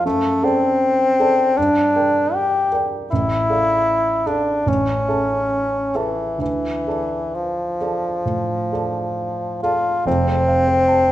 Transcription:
0.05 grand piano F#2, bassoon A3
0.43 bassoon C4, grand piano A4 D5 A5
1.20 grand piano A4 D5 A5
1.57 grand piano G2, bassoon D4
1.96 grand piano A#4 D5 G5
2.34 bassoon G4
2.72 grand piano A#4 D5 G5
3.11 grand piano A1, bassoon E4
3.50 grand piano A4 D5 F5
4.26 bassoon D4, grand piano A4 D5 F5
4.66 grand piano A1, bassoon C#4
5.08 grand piano A4 E5 A5
5.95 bassoon E3, grand piano A4 E5 A5
6.38 grand piano D2, bassoon E3
6.87 grand piano A4 D5 A5
7.35 bassoon F3
7.81 grand piano A4 D5 A5
8.25 grand piano A2
8.72 grand piano A4 D5 A5
9.63 bassoon F4, grand piano A4 D5 A5
10.06 grand piano F1 F2, bassoon C4
10.27 grand piano C5
10.48 grand piano F5
10.67 grand piano C5
10.88 grand piano A5
11.07 grand piano C5

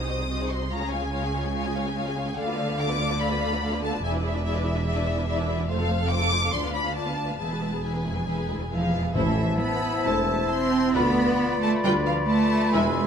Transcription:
Already playing: double bass section C2, cello section C3, violin section D#6
0.08 viola section C4 F#4, violin section C5 D#5
0.19 viola section D#4 G#4, violin section G#4 C5
0.29 viola section C4 F#4, violin section C5 D#5
0.40 viola section D#4 G#4, violin section G#4 C5
0.50 viola section C4 F#4, violin section C5 D#5 C6
0.61 viola section D#4 G#4, violin section G#4 C5
0.71 double bass section C#2, cello section C#3, viola section G#3 F4, violin section C#5 F5 A#5
0.82 viola section C#4 G#4, violin section G#4 G#5
0.92 viola section G#3 F4, violin section C#5 F5 G#5
1.02 viola section C#4 G#4, violin section G#4 G#5
1.13 viola section G#3 F4, violin section C#5 F5
1.24 viola section C#4 G#4, violin section G#4 G#5
1.34 viola section G#3 F4, violin section C#5 F5
1.45 viola section C#4 G#4, violin section G#4 G#5
1.55 viola section G#3 F4, violin section C#5 F5
1.65 viola section C#4 G#4, violin section G#4 G#5
1.76 viola section G#3 F4, violin section C#5 F5
1.87 viola section C#4 G#4, violin section G#4 G#5
1.97 viola section G#3 F4, violin section C#5 F5
2.07 viola section C#4 G#4, violin section G#4 G#5
2.17 viola section G#3 F4, violin section C#5 F5
2.27 viola section C#4 G#4, violin section G#4 G#5
2.37 double bass section D2, cello section D3, viola section A3 A4, violin section D5 F5
2.48 viola section B3 F4, violin section B4 D5
2.58 viola section A3 A4, violin section D5 F5
2.68 viola section B3 F4, violin section B4 D5
2.79 viola section A3 A4, violin section D5 F5 D6
2.90 viola section B3 F4, violin section B4 D5
2.99 viola section A3 A4, violin section D5 F5
3.10 viola section B3 F4, violin section B4 D5
3.20 viola section A3 A4, violin section D5 F5 B5
3.30 viola section B3 F4, violin section B4 D5
3.41 viola section A3 A4, violin section D5 F5
3.52 viola section B3 F4, violin section B4 D5
3.63 viola section A3 A4, violin section D5 F5
3.73 viola section B3 F4, violin section B4 D5
3.83 viola section A3 A4, violin section D5 F5 A5
3.93 viola section B3 F4, violin section B4 D5
4.04 double bass section E1, cello section E2, viola section E4 G#4, violin section D5 E5 G#5
4.14 viola section D4 E4, violin section B4 D5
4.24 viola section E4 G#4, violin section D5 E5
4.35 viola section D4 E4, violin section B4 D5
4.45 viola section E4 G#4, violin section D5 E5
4.55 viola section D4 E4, violin section B4 D5
4.65 viola section E4 G#4, violin section D5 E5
4.76 viola section D4 E4, violin section B4 D5
4.86 viola section E4 G#4, violin section D5 E5
4.96 viola section D4 E4, violin section B4 D5
5.06 viola section E4 G#4, violin section D5 E5
5.17 viola section D4 E4, violin section B4 D5
5.28 viola section E4 G#4, violin section D5 E5
5.38 viola section D4 E4, violin section B4 D5
5.48 viola section E4 G#4, violin section D5 E5
5.58 viola section D4 E4, violin section B4 D5
5.68 double bass section F1, cello section F2, viola section A3 F4, violin section C5 F5
5.79 viola section C4 A4, violin section A4 F5
5.90 viola section A3 F4, violin section C5
6.00 viola section C4 A4, violin section A4 F5
6.11 viola section A3 F4, violin section C5 D6
6.21 viola section C4 A4, violin section A4 F5
6.31 viola section A3 F4, violin section C5
6.42 viola section C4 A4, violin section A4 F5
6.52 cello section D2, double bass section D2, viola section D4 F4, violin section D5 C6
6.63 viola section B3 D4, violin section B4 F5
6.73 viola section D4 F4, violin section D5 B5
6.84 viola section B3 D4, violin section B4 F5
6.95 viola section D4 F4, violin section D5 A5
7.06 viola section B3 D4, violin section B4 F5
7.17 viola section D4 F4, violin section D5
7.27 viola section B3 D4, violin section B4 F5
7.39 double bass section E1, cello section E2, viola section G#3 E4, violin section G#4 B4 A5
7.50 viola section B3 G#4, violin section G#4 B4
7.61 viola section G#3 E4, violin section G#4 B4
7.73 viola section B3 G#4, violin section G#4 B4
7.83 cello section E2, viola section G#3 E4, violin section G#4 B4 G#5
7.94 viola section B3 G#4, violin section G#4 B4
8.05 cello section F2, viola section G#3 E4, violin section G#4 B4
8.16 viola section B3 G#4, violin section G#4 B4
8.26 cello section E2, viola section G#3 E4, violin section G#4 B4
8.38 viola section B3 G#4, violin section G#4 B4
8.49 cello section D2, viola section G#3 E4, violin section G#4 B4
8.59 viola section B3 G#4, violin section G#4 B4
8.70 cello section E2 F3, viola section G#3 E4, violin section G#4 B4 F5
8.80 viola section B3 G#4, violin section G#4 B4
8.91 cello section F2, viola section G#3 E4, violin section G#4 B4
9.03 viola section B3 G#4, violin section G#4 B4
9.14 double bass section A1, tuba A1, timpani A2, cello section E3, french horn section E4 C5, viola section E4 A4, clarinet E4, violin section C5 E5, oboe E5, flute section A5
9.60 cello section B3, violin section B5
10.05 double bass section E1, tuba E1, cello section A3, viola section E4 A4, violin section C5 A5
10.49 cello section C4, violin section C6
10.94 double bass section D2, tuba D2, cello section B3, viola section F4 B4, french horn section F4 B4, clarinet F4, violin section B4 B5, oboe D5, flute section B5
11.61 cello section A3, violin section A5
11.83 tuba D2, double bass section D2, cello section G3, viola section F4 B4, violin section B4 G5
12.06 cello section F3, violin section F5
12.28 cello section A3, violin section A5
12.73 tuba E1, double bass section E2, cello section G#3, viola section E4 B4, french horn section E4, oboe E5, violin section E5 G#5

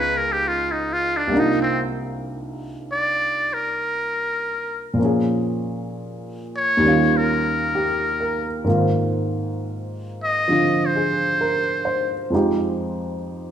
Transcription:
Already playing: grand piano C#2 C#3 B3 D#4 F4
0.00 muted trumpet B4
0.17 muted trumpet A#4
0.32 muted trumpet G4
0.48 muted trumpet F4
0.72 muted trumpet D#4
0.93 muted trumpet F4
1.17 muted trumpet D4
1.28 grand piano C2 C3
1.32 grand piano A#3 D4
1.36 grand piano D#4 F4, muted trumpet D#4
1.62 muted trumpet C4
2.92 muted trumpet D5
3.54 muted trumpet A#4
4.94 grand piano A#2 F3
4.99 grand piano A#3 C#4
5.05 grand piano G#4
6.56 muted trumpet C#5
6.77 grand piano D#2 D#3
6.83 grand piano G3 C#4
6.88 grand piano F4
7.17 muted trumpet A#4
7.75 grand piano G4
8.20 grand piano A#4
8.64 grand piano G#2 D#3 A#3 C4
8.69 grand piano F4
10.24 muted trumpet D#5
10.48 grand piano D3 F3 C4 F4
10.86 muted trumpet C5
10.96 grand piano G#4
11.41 grand piano A#4
11.85 grand piano C5
12.30 grand piano F2 F3 G#3 D#4
12.35 grand piano G4

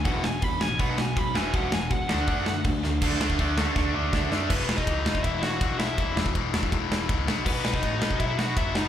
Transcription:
0.05 picked electric bass E1, distorted electric guitar E2 B2 E3, lead electric guitar F#5, kick, crash
0.24 distorted electric guitar E2 B2, lead electric guitar G#5, snare
0.42 picked electric bass E1, distorted electric guitar E2 B2, lead electric guitar B5, kick, crash
0.60 picked electric bass A1, distorted electric guitar E2 B2, lead electric guitar G#5, snare
0.79 picked electric bass B1, distorted electric guitar B2 F#3 B3, lead electric guitar F#5, kick, crash
0.97 distorted electric guitar B2 F#3, lead electric guitar G#5, snare
1.16 picked electric bass B1, distorted electric guitar B2 F#3, lead electric guitar B5, kick, crash
1.34 picked electric bass E1, distorted electric guitar E2 B2 E3, lead electric guitar G#5, snare
1.53 picked electric bass E1, distorted electric guitar E2 B2 E3, lead electric guitar F#5, kick, crash
1.72 picked electric bass E1, distorted electric guitar E2 B2, lead electric guitar G#5, snare
1.90 picked electric bass E1, distorted electric guitar E2 B2, lead electric guitar F#5, kick, crash
2.09 picked electric bass D2, distorted electric guitar D3 A3 D4, snare
2.27 picked electric bass F#2, distorted electric guitar D3 A3 D4, kick, crash
2.46 distorted electric guitar D3 A3, snare
2.64 picked electric bass D2, distorted electric guitar D3 A3, kick, crash
2.84 picked electric bass D2, distorted electric guitar D3 A3, snare
3.02 picked electric bass D2, distorted electric guitar D3 A3 D4, kick, crash
3.20 picked electric bass D2, distorted electric guitar D3 A3 D4, snare
3.30 kick
3.39 picked electric bass D2, distorted electric guitar D3 A3 D4, kick, crash
3.58 distorted electric guitar D3 A3 D4, snare
3.76 picked electric bass D2, distorted electric guitar D3 A3 D4, kick, snare
3.94 picked electric bass D2, distorted electric guitar D3 A3 D4
4.13 picked electric bass D2, distorted electric guitar D3 A3 D4, kick, snare
4.32 picked electric bass F#2, distorted electric guitar D3 A3 D4, snare
4.50 picked electric bass E1, distorted electric guitar E2 B2 E3, lead electric guitar B3 B4, kick, crash
4.68 picked electric bass E1, snare
4.76 lead electric guitar D#4 D#5, kick
4.87 picked electric bass C#2, distorted electric guitar E2 B2 E3, kick, ride
5.06 picked electric bass E1, distorted electric guitar E2 B2 E3, snare
5.15 kick
5.23 picked electric bass E1, distorted electric guitar E2 B2 E3, lead electric guitar E4 E5, kick, ride
5.43 lead electric guitar F#4 F#5, snare
5.61 picked electric bass B1, distorted electric guitar E2 B2 E3, kick, ride
5.79 distorted electric guitar E2 B2 E3, lead electric guitar E4 E5, snare
5.98 picked electric bass E1, distorted electric guitar E2 B2 E3, kick, ride
6.17 picked electric bass E1, snare
6.26 kick
6.34 picked electric bass E1, distorted electric guitar E2 B2 E3, kick, ride
6.53 picked electric bass E1, distorted electric guitar E2 B2 E3, snare
6.63 kick
6.72 picked electric bass E1, distorted electric guitar E2 B2 E3, kick, ride
6.92 picked electric bass E1, snare
7.08 picked electric bass C#2, distorted electric guitar E2 B2 E3, kick, ride
7.26 picked electric bass B1, distorted electric guitar B2 F#3 B3, snare
7.45 picked electric bass B1, distorted electric guitar B2 F#3 B3, lead electric guitar B3 B4, kick, crash
7.64 picked electric bass B1, snare
7.74 lead electric guitar D#4 D#5, kick
7.82 picked electric bass A2, distorted electric guitar B2 F#3 B3, kick, ride
8.00 picked electric bass B1, distorted electric guitar B2 F#3 B3, snare
8.11 kick
8.19 picked electric bass B1, distorted electric guitar B2 F#3 B3, lead electric guitar E4 E5, kick, ride
8.39 lead electric guitar F#4 F#5, snare
8.56 picked electric bass F#1, distorted electric guitar B2 F#3 B3, lead electric guitar E4 E5, kick, ride
8.75 distorted electric guitar B2 F#3 B3, lead electric guitar D#4 D#5, snare

